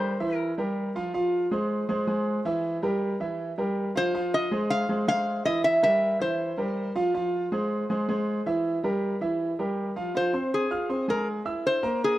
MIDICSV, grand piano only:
0, 0, Header, 1, 2, 480
1, 0, Start_track
1, 0, Key_signature, -4, "minor"
1, 0, Tempo, 375235
1, 1457, Time_signature, 4, 2, 24, 8
1, 15587, End_track
2, 0, Start_track
2, 0, Title_t, "Grand piano"
2, 0, Program_c, 0, 0
2, 0, Note_on_c, 0, 55, 83
2, 0, Note_on_c, 0, 67, 73
2, 0, Note_on_c, 0, 70, 73
2, 169, Note_off_c, 0, 55, 0
2, 171, Note_off_c, 0, 67, 0
2, 174, Note_off_c, 0, 70, 0
2, 254, Note_on_c, 0, 52, 84
2, 260, Note_on_c, 0, 76, 87
2, 261, Note_on_c, 0, 64, 73
2, 649, Note_off_c, 0, 52, 0
2, 652, Note_off_c, 0, 76, 0
2, 653, Note_off_c, 0, 64, 0
2, 739, Note_on_c, 0, 55, 70
2, 743, Note_on_c, 0, 67, 70
2, 747, Note_on_c, 0, 70, 71
2, 1132, Note_off_c, 0, 55, 0
2, 1134, Note_off_c, 0, 67, 0
2, 1137, Note_off_c, 0, 70, 0
2, 1219, Note_on_c, 0, 53, 91
2, 1224, Note_on_c, 0, 65, 86
2, 1226, Note_on_c, 0, 77, 83
2, 1415, Note_off_c, 0, 53, 0
2, 1418, Note_off_c, 0, 65, 0
2, 1419, Note_off_c, 0, 77, 0
2, 1453, Note_on_c, 0, 53, 86
2, 1460, Note_on_c, 0, 65, 84
2, 1463, Note_on_c, 0, 77, 87
2, 1849, Note_off_c, 0, 53, 0
2, 1853, Note_off_c, 0, 65, 0
2, 1854, Note_off_c, 0, 77, 0
2, 1936, Note_on_c, 0, 56, 75
2, 1939, Note_on_c, 0, 68, 68
2, 1943, Note_on_c, 0, 72, 78
2, 2330, Note_off_c, 0, 56, 0
2, 2332, Note_off_c, 0, 68, 0
2, 2335, Note_off_c, 0, 72, 0
2, 2415, Note_on_c, 0, 56, 79
2, 2415, Note_on_c, 0, 68, 75
2, 2419, Note_on_c, 0, 72, 80
2, 2613, Note_off_c, 0, 56, 0
2, 2613, Note_off_c, 0, 68, 0
2, 2616, Note_off_c, 0, 72, 0
2, 2651, Note_on_c, 0, 56, 74
2, 2655, Note_on_c, 0, 68, 70
2, 2661, Note_on_c, 0, 72, 67
2, 3048, Note_off_c, 0, 56, 0
2, 3050, Note_off_c, 0, 68, 0
2, 3053, Note_off_c, 0, 72, 0
2, 3135, Note_on_c, 0, 52, 96
2, 3140, Note_on_c, 0, 64, 92
2, 3145, Note_on_c, 0, 76, 89
2, 3530, Note_off_c, 0, 52, 0
2, 3533, Note_off_c, 0, 64, 0
2, 3536, Note_off_c, 0, 76, 0
2, 3614, Note_on_c, 0, 55, 73
2, 3619, Note_on_c, 0, 67, 82
2, 3623, Note_on_c, 0, 70, 76
2, 4009, Note_off_c, 0, 55, 0
2, 4012, Note_off_c, 0, 67, 0
2, 4015, Note_off_c, 0, 70, 0
2, 4093, Note_on_c, 0, 52, 80
2, 4098, Note_on_c, 0, 64, 73
2, 4102, Note_on_c, 0, 76, 78
2, 4489, Note_off_c, 0, 52, 0
2, 4492, Note_off_c, 0, 64, 0
2, 4494, Note_off_c, 0, 76, 0
2, 4577, Note_on_c, 0, 55, 71
2, 4583, Note_on_c, 0, 67, 69
2, 4585, Note_on_c, 0, 70, 72
2, 4971, Note_off_c, 0, 55, 0
2, 4975, Note_off_c, 0, 67, 0
2, 4976, Note_off_c, 0, 70, 0
2, 5056, Note_on_c, 0, 53, 90
2, 5060, Note_on_c, 0, 65, 82
2, 5062, Note_on_c, 0, 77, 85
2, 5254, Note_off_c, 0, 53, 0
2, 5256, Note_off_c, 0, 65, 0
2, 5257, Note_off_c, 0, 77, 0
2, 5298, Note_on_c, 0, 53, 88
2, 5303, Note_on_c, 0, 65, 85
2, 5305, Note_on_c, 0, 77, 84
2, 5692, Note_off_c, 0, 53, 0
2, 5695, Note_off_c, 0, 65, 0
2, 5696, Note_off_c, 0, 77, 0
2, 5774, Note_on_c, 0, 56, 77
2, 5780, Note_on_c, 0, 68, 73
2, 5784, Note_on_c, 0, 72, 75
2, 6170, Note_off_c, 0, 56, 0
2, 6173, Note_off_c, 0, 68, 0
2, 6175, Note_off_c, 0, 72, 0
2, 6255, Note_on_c, 0, 56, 75
2, 6261, Note_on_c, 0, 68, 69
2, 6263, Note_on_c, 0, 72, 71
2, 6454, Note_off_c, 0, 56, 0
2, 6457, Note_off_c, 0, 68, 0
2, 6458, Note_off_c, 0, 72, 0
2, 6496, Note_on_c, 0, 56, 72
2, 6500, Note_on_c, 0, 68, 70
2, 6505, Note_on_c, 0, 72, 72
2, 6890, Note_off_c, 0, 56, 0
2, 6893, Note_off_c, 0, 68, 0
2, 6896, Note_off_c, 0, 72, 0
2, 6975, Note_on_c, 0, 52, 84
2, 6980, Note_on_c, 0, 64, 96
2, 6982, Note_on_c, 0, 76, 90
2, 7370, Note_off_c, 0, 52, 0
2, 7373, Note_off_c, 0, 64, 0
2, 7374, Note_off_c, 0, 76, 0
2, 7452, Note_on_c, 0, 55, 75
2, 7456, Note_on_c, 0, 67, 76
2, 7457, Note_on_c, 0, 70, 71
2, 7848, Note_off_c, 0, 55, 0
2, 7851, Note_off_c, 0, 67, 0
2, 7851, Note_off_c, 0, 70, 0
2, 7930, Note_on_c, 0, 52, 82
2, 7935, Note_on_c, 0, 64, 76
2, 7940, Note_on_c, 0, 76, 77
2, 8327, Note_off_c, 0, 52, 0
2, 8330, Note_off_c, 0, 64, 0
2, 8333, Note_off_c, 0, 76, 0
2, 8412, Note_on_c, 0, 55, 67
2, 8416, Note_on_c, 0, 67, 68
2, 8419, Note_on_c, 0, 70, 73
2, 8808, Note_off_c, 0, 55, 0
2, 8810, Note_off_c, 0, 67, 0
2, 8812, Note_off_c, 0, 70, 0
2, 8895, Note_on_c, 0, 53, 79
2, 8898, Note_on_c, 0, 65, 99
2, 8903, Note_on_c, 0, 77, 84
2, 9093, Note_off_c, 0, 53, 0
2, 9095, Note_off_c, 0, 65, 0
2, 9098, Note_off_c, 0, 77, 0
2, 9136, Note_on_c, 0, 53, 83
2, 9139, Note_on_c, 0, 65, 88
2, 9141, Note_on_c, 0, 77, 79
2, 9530, Note_off_c, 0, 53, 0
2, 9532, Note_off_c, 0, 65, 0
2, 9533, Note_off_c, 0, 77, 0
2, 9617, Note_on_c, 0, 56, 74
2, 9621, Note_on_c, 0, 68, 76
2, 9626, Note_on_c, 0, 72, 72
2, 10011, Note_off_c, 0, 56, 0
2, 10013, Note_off_c, 0, 68, 0
2, 10016, Note_off_c, 0, 72, 0
2, 10104, Note_on_c, 0, 56, 81
2, 10105, Note_on_c, 0, 68, 71
2, 10111, Note_on_c, 0, 72, 79
2, 10298, Note_off_c, 0, 56, 0
2, 10298, Note_off_c, 0, 68, 0
2, 10302, Note_off_c, 0, 72, 0
2, 10343, Note_on_c, 0, 56, 80
2, 10345, Note_on_c, 0, 68, 79
2, 10353, Note_on_c, 0, 72, 72
2, 10734, Note_off_c, 0, 56, 0
2, 10735, Note_off_c, 0, 68, 0
2, 10740, Note_off_c, 0, 72, 0
2, 10824, Note_on_c, 0, 52, 86
2, 10826, Note_on_c, 0, 64, 83
2, 10831, Note_on_c, 0, 76, 88
2, 11214, Note_off_c, 0, 52, 0
2, 11216, Note_off_c, 0, 64, 0
2, 11218, Note_off_c, 0, 76, 0
2, 11303, Note_on_c, 0, 55, 73
2, 11305, Note_on_c, 0, 67, 76
2, 11311, Note_on_c, 0, 70, 78
2, 11694, Note_off_c, 0, 55, 0
2, 11695, Note_off_c, 0, 67, 0
2, 11699, Note_off_c, 0, 70, 0
2, 11781, Note_on_c, 0, 52, 73
2, 11784, Note_on_c, 0, 64, 75
2, 11790, Note_on_c, 0, 76, 76
2, 12173, Note_off_c, 0, 52, 0
2, 12174, Note_off_c, 0, 64, 0
2, 12178, Note_off_c, 0, 76, 0
2, 12268, Note_on_c, 0, 55, 66
2, 12270, Note_on_c, 0, 67, 72
2, 12274, Note_on_c, 0, 70, 64
2, 12657, Note_off_c, 0, 55, 0
2, 12658, Note_off_c, 0, 67, 0
2, 12660, Note_off_c, 0, 70, 0
2, 12740, Note_on_c, 0, 53, 90
2, 12745, Note_on_c, 0, 65, 78
2, 12747, Note_on_c, 0, 77, 77
2, 12935, Note_off_c, 0, 53, 0
2, 12938, Note_off_c, 0, 65, 0
2, 12939, Note_off_c, 0, 77, 0
2, 12981, Note_on_c, 0, 65, 81
2, 12982, Note_on_c, 0, 53, 81
2, 12987, Note_on_c, 0, 77, 76
2, 13176, Note_off_c, 0, 53, 0
2, 13176, Note_off_c, 0, 65, 0
2, 13179, Note_off_c, 0, 77, 0
2, 13215, Note_on_c, 0, 60, 68
2, 13217, Note_on_c, 0, 72, 79
2, 13224, Note_on_c, 0, 84, 69
2, 13609, Note_off_c, 0, 60, 0
2, 13610, Note_off_c, 0, 72, 0
2, 13614, Note_off_c, 0, 84, 0
2, 13695, Note_on_c, 0, 65, 70
2, 13697, Note_on_c, 0, 77, 65
2, 13703, Note_on_c, 0, 89, 68
2, 13892, Note_off_c, 0, 65, 0
2, 13894, Note_off_c, 0, 77, 0
2, 13897, Note_off_c, 0, 89, 0
2, 13934, Note_on_c, 0, 60, 71
2, 13938, Note_on_c, 0, 72, 74
2, 13941, Note_on_c, 0, 84, 75
2, 14131, Note_off_c, 0, 60, 0
2, 14134, Note_off_c, 0, 72, 0
2, 14136, Note_off_c, 0, 84, 0
2, 14173, Note_on_c, 0, 56, 63
2, 14180, Note_on_c, 0, 68, 66
2, 14182, Note_on_c, 0, 80, 69
2, 14568, Note_off_c, 0, 56, 0
2, 14571, Note_off_c, 0, 68, 0
2, 14573, Note_off_c, 0, 80, 0
2, 14650, Note_on_c, 0, 64, 68
2, 14650, Note_on_c, 0, 76, 71
2, 14656, Note_on_c, 0, 88, 71
2, 15046, Note_off_c, 0, 64, 0
2, 15046, Note_off_c, 0, 76, 0
2, 15049, Note_off_c, 0, 88, 0
2, 15128, Note_on_c, 0, 58, 84
2, 15134, Note_on_c, 0, 70, 78
2, 15137, Note_on_c, 0, 82, 85
2, 15524, Note_off_c, 0, 58, 0
2, 15528, Note_off_c, 0, 70, 0
2, 15530, Note_off_c, 0, 82, 0
2, 15587, End_track
0, 0, End_of_file